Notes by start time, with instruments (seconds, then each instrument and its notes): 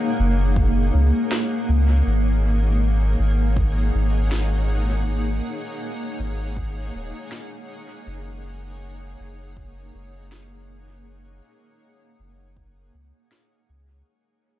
Already playing: ambient pad A#3 D#4 G#4 C#5 F#5
0.19 sub bass F#1
0.56 kick
0.94 sub bass C#2
1.32 snare
1.69 sub bass C#2
2.06 sub bass G#1
2.19 ambient pad D#4
2.38 ambient pad G#4 C#5
2.72 ambient pad F#5
3.19 sub bass G#1
3.56 kick
3.94 sub bass G#1
4.32 snare
6.19 sub bass G#1
6.57 kick
6.94 sub bass D#1
7.32 snare
8.07 sub bass F#1
9.19 sub bass F#1
9.57 kick
9.94 sub bass F#1
10.32 snare
12.19 sub bass F#1
12.56 kick
12.94 sub bass C#2
13.32 snare
13.69 sub bass C#2